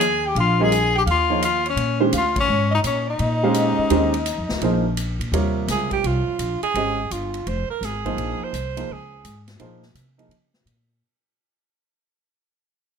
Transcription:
Already playing: D#2 G#4 G#5
0.01 hi-hat pedal, ride
0.26 G4 G5
0.35 A#1 F5, ride
0.40 F4
0.59 G3 C4 F4 A#4 D#5 G#5
0.63 G#4
0.72 hi-hat pedal, ride
0.96 G4 G5
1.06 D#2 F5, ride
1.11 F4
1.30 F3 A#3 D#4 G#4 C#5
1.42 F4 F5, hi-hat pedal, ride
1.66 C#5, ride
1.70 C#4
1.76 A#2, ride
2.00 D#3 G#3 C#4 G4 C5
2.12 D2 F5, hi-hat pedal, ride
2.18 F4
2.36 C#5, kick, ride
2.40 C#4
2.48 G#2
2.71 D#4 D#5
2.83 A#2 C#4 C#5, hi-hat pedal, ride
3.07 D#4 D#5
3.19 A#2, ride
3.43 G#3 C#4 G4 C5 F5
3.54 hi-hat pedal, ride
3.79 muted upright bass stroke
3.90 D#2 D#3 G#3 C#4 G4 C5, ride
4.14 ride
4.26 hi-hat pedal, ride
4.38 F2
4.49 D2, snare
4.61 A#1 F3 A#3 D#4 G#4 C5, ride
4.97 hi-hat pedal, ride
5.19 A#2, ride
5.32 D#2 C3 G3 F4 A#4 C#5, ride
5.68 C#2 G#4, snare, hi-hat pedal, ride
5.91 G4, kick, ride
6.04 C2 F4, ride
6.28 muted upright bass stroke
6.39 A#1, hi-hat pedal, ride
6.62 G#4, muted upright bass stroke, ride
6.74 G#1 G#3 C#4 G4 C5 D#5, ride
7.11 G1 F4, hi-hat pedal, ride
7.34 ride
7.47 F1 C5, ride
7.70 A#4, muted upright bass stroke
7.81 G#1, snare, hi-hat pedal, ride
7.85 G#4
8.05 F3 A#3 D#4 G#4 C5, kick, ride
8.16 A#1, ride
8.40 C5, muted upright bass stroke
8.52 C2, hi-hat pedal, ride
8.77 F3 A#3 D#4 G#4 C5, ride
8.89 C#2 G#4
9.24 G#2, hi-hat pedal, ride
9.48 snare, ride
9.59 A#2 F3 A#3 D#4 G#4 C5, ride
9.83 snare
9.95 C3, hi-hat pedal, ride
10.18 F3 A#3 D#4 G#4 D#5, ride
10.29 C#3, ride
10.54 snare
10.65 A#2, hi-hat pedal, ride

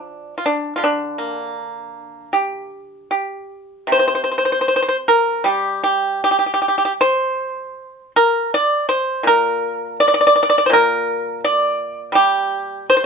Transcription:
Already playing: F3
0.01 D4
0.38 F4
0.46 D4
0.76 D3 F4
0.84 D4
1.18 A#3
2.33 G4
3.11 G4
3.87 C3
3.92 C5
3.99 C5
4.08 C5
4.15 C5
4.24 C5
4.32 C5
4.38 C5
4.45 C5
4.52 C5
4.61 C5
4.68 C5
4.76 C5
4.82 C5
4.88 C5
5.08 A#4
5.44 G3 G4
5.84 G4
6.24 G4
6.31 G4
6.39 G4
6.46 G4
6.54 G4
6.62 G4
6.68 G4
6.78 G4
6.85 G4
7.01 C5
8.16 A#4
8.54 D5
8.89 C5
9.23 A#2 A#4
10.00 D5
10.08 D5
10.14 D5
10.21 D5
10.27 D5
10.36 D5
10.43 D5
10.50 D5
10.58 D5
10.66 A#2 C5
10.73 A#4
11.44 D5
12.12 G3 G4
12.90 C5
12.97 C5

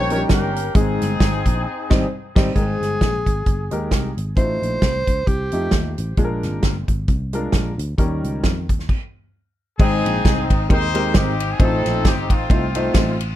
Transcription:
Already playing: A#1 G4 A#4
0.10 F3 C#4 D#4 A#4 C#5, closed hi-hat
0.15 G3
0.29 G1 A#3 C#4 G4, kick, snare, closed hi-hat
0.56 closed hi-hat
0.75 G#1 G#2 G#3 C4 D#4 G#4, kick, closed hi-hat
1.01 G1, snare, closed hi-hat
1.20 G#1, kick, snare, closed hi-hat
1.46 A#1, kick, closed hi-hat
1.90 G#1 G3 C4 D#4, kick, snare, crash
2.35 G#1 G3 C4 D#4, kick, snare, crash
2.55 G#1 G#2 G#3 D#4 G#4 A#4 G5, kick, closed hi-hat
2.62 C5
2.81 G1, snare, closed hi-hat
3.01 A#1, kick, snare, closed hi-hat
3.26 G#1, kick, closed hi-hat
3.46 G1, kick, closed hi-hat
3.71 D#2 G#3 D#4 G4 A#4, closed hi-hat
3.91 C2, kick, snare, closed hi-hat
4.17 G#1, closed hi-hat
4.36 A1 A2 A3 D#4 F4 C5, kick, closed hi-hat
4.62 A#1, closed hi-hat
4.82 C2, kick, snare, closed hi-hat
5.07 C#2, kick, closed hi-hat
5.27 C2 G4, kick, closed hi-hat
5.52 F2 A3 D#4 F4 G4, closed hi-hat
5.71 D#2, kick, snare, closed hi-hat
5.98 A1, closed hi-hat
6.17 A#1 A#2 G#3 D4 F4 G#4, kick, closed hi-hat
6.25 A#4
6.43 G#1, snare, closed hi-hat
6.63 G1, kick, snare, closed hi-hat
6.88 G#1, kick, closed hi-hat
7.08 C2, kick, closed hi-hat
7.33 G#3 D4 F4 A#4, closed hi-hat
7.52 A#1, kick, snare, closed hi-hat
7.78 D2, closed hi-hat
7.98 D#2 D#3 G3 C#4 D#4 A#4, kick, closed hi-hat
8.24 C#2, closed hi-hat
8.43 F2, kick, snare, closed hi-hat
8.69 D#2, kick, closed hi-hat
8.79 snare
8.89 kick, crash
9.79 G#1 G#2 G#3 C4 D#4 G#4 C5 G5, kick, crash
10.06 A#1, ride bell
10.25 C2, kick, snare, ride bell
10.50 G#1, kick, ride bell
10.69 D#2 G#3 C4 D#4 G4 A#4 C5, kick, ride bell
10.94 G#3 C4 D#4 G4 A#4, ride bell
11.14 G#1 C4 D#4 G4, kick, snare, ride bell
11.40 ride bell
11.51 G#4
11.59 A1 A2 A3 C4 D#4 F4 A4 C5, kick, ride bell
11.85 A#1, snare, ride bell
12.05 G1 G4, kick, snare, ride bell
12.30 A1 C4 F4, kick, ride bell
12.49 C2 A3 C4 D#4 F4 C5, kick, ride bell
12.75 A3 C4 D#4 F4 C5, ride bell
12.94 A1, kick, snare, ride bell
13.20 ride bell

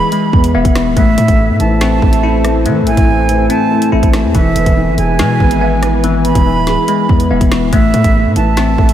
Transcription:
Already playing: E3 G#3 B3 E5 B5
0.12 G#3, closed hi-hat
0.33 E2 B3, kick
0.44 closed hi-hat
0.54 E1 B3 E5
0.65 E1, kick, closed hi-hat
0.76 B3, cross-stick, snare, closed hi-hat
0.86 D1
0.97 A1 A2 A3 E4 A4 C5 E5, kick, closed hi-hat
1.18 A2 A3, closed hi-hat
1.28 A1, kick, closed hi-hat
1.39 A2
1.49 A2
1.60 A1 E3 A5, closed hi-hat
1.81 C4, snare, closed hi-hat
2.02 A1 A3, kick
2.13 closed hi-hat
2.23 E4
2.44 A3, cross-stick, closed hi-hat
2.66 A2 E3 A3, closed hi-hat
2.81 A1
2.87 A3 G#5, closed hi-hat
2.97 A1, kick, closed hi-hat
3.08 A2
3.29 E3, closed hi-hat
3.50 C4 A5, closed hi-hat
3.71 A3
3.82 closed hi-hat
3.92 A1 E4
4.03 A1, kick, closed hi-hat
4.13 A3, cross-stick, snare, closed hi-hat
4.24 E2
4.34 E1 E3 E4 B4 E5 G#5, kick, closed hi-hat
4.56 E1 B3, closed hi-hat
4.66 E1, kick, closed hi-hat
4.77 E3
4.88 G#1
4.98 E1 G#3 G#5, closed hi-hat
5.19 B2 G#3, snare, closed hi-hat
5.40 G#1 B3, kick
5.51 closed hi-hat
5.61 B3 E5
5.83 B3, cross-stick, closed hi-hat
6.04 E3, closed hi-hat
6.25 B3 B5, closed hi-hat
6.35 E1, kick, closed hi-hat
6.46 E3
6.57 D1
6.67 G#3, snare, closed hi-hat
6.88 G#3, closed hi-hat
7.09 E2 B3, kick
7.20 closed hi-hat
7.30 E1 B3 E5
7.41 E1, kick, closed hi-hat
7.52 B3, cross-stick, snare, closed hi-hat
7.62 D1
7.73 A1 A2 A3 E5, kick, closed hi-hat
7.94 A2 A3, closed hi-hat
8.04 A1, kick, closed hi-hat
8.15 A2
8.26 A2
8.36 A1 E3 A5, closed hi-hat
8.57 C4, snare, closed hi-hat
8.78 A1 A3, kick
8.89 closed hi-hat

